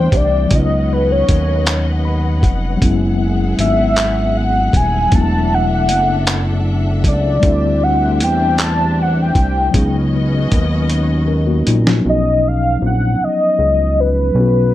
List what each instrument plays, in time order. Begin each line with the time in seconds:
Already playing: tine electric piano E3 G3 A3 C4 D4, string section D4 C5 E5 G5, soft synth lead C5
0.12 analog synth bass C2, kick, closed hi-hat
0.17 soft synth lead D5
0.47 tine electric piano F#3 G#3, string section C#4, closed hi-hat
0.51 analog synth bass C#2, tine electric piano B3 C#4, string section B4 D#5 F#5, kick
0.55 tine electric piano D#4, soft synth lead D#5
0.93 soft synth lead B4
1.12 soft synth lead C#5
1.29 analog synth bass D#2, kick, closed hi-hat
1.67 clap, closed hi-hat
2.05 tine electric piano B5
2.43 analog synth bass F1, tine electric piano F#5, kick, closed hi-hat
2.76 tine electric piano F#3 G#3
2.81 analog synth bass F#1, tine electric piano B3 C#4 E4, string section B3 G#4 E5, kick, closed hi-hat
3.59 analog synth bass G#1, soft synth lead E5, closed hi-hat
3.96 clap, closed hi-hat
4.37 soft synth lead F#5
4.73 analog synth bass D#1, soft synth lead G#5, kick, closed hi-hat
5.09 tine electric piano F#3 A3, string section D4 A4, kick, closed hi-hat
5.13 analog synth bass E1, tine electric piano B3 D4 E4, soft synth lead A5
5.54 soft synth lead F#5
5.74 soft synth lead F#5
5.89 analog synth bass F#1, closed hi-hat
6.27 clap, closed hi-hat
7.04 analog synth bass C#2, soft synth lead D5, kick, closed hi-hat
7.39 tine electric piano G3 A3, kick, closed hi-hat
7.43 analog synth bass D2, tine electric piano C4 D4 E4, string section D4 G4 C5
7.83 soft synth lead F#5
8.17 soft synth lead F#5, closed hi-hat
8.22 analog synth bass E2, soft synth lead G5
8.58 clap, closed hi-hat
8.63 soft synth lead A5
9.02 soft synth lead F#5
9.22 soft synth lead G5
9.35 analog synth bass C2, kick, closed hi-hat
9.71 tine electric piano F#3 G#3 B3, kick, closed hi-hat
9.75 analog synth bass C#2, string section C#4 F#4 B4 D#5, tine electric piano C#4 D#4
10.52 analog synth bass D#2, kick, closed hi-hat
10.90 closed hi-hat
11.28 tine electric piano C#4 A#4
11.47 tine electric piano A#3 F#4
11.66 analog synth bass A#1, tine electric piano F#3 D#4, closed hi-hat
11.85 tine electric piano F3 C#4, snare
12.00 tine electric piano F#3 B3
12.06 analog synth bass B1, tine electric piano C#4 D#4, soft synth lead D#5
12.48 soft synth lead F5
12.82 analog synth bass A#1
12.86 soft synth lead F#5
13.21 analog synth bass C#2, soft synth lead D#5
13.59 analog synth bass C#2
14.00 soft synth lead B4
14.32 analog synth bass B1, tine electric piano F#3 B3
14.38 tine electric piano C#4 F#4